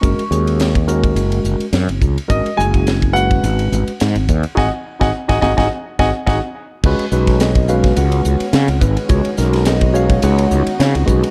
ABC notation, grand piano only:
X:1
M:4/4
L:1/16
Q:"Swing 16ths" 1/4=106
K:Abdor
V:1 name="Grand piano"
d'6 z8 z2 | e2 a4 g8- g2 | [ega] z2 [ega] z [ega] [ega] [ega] z2 [ega] z [ega] z3 | z16 |
z16 |]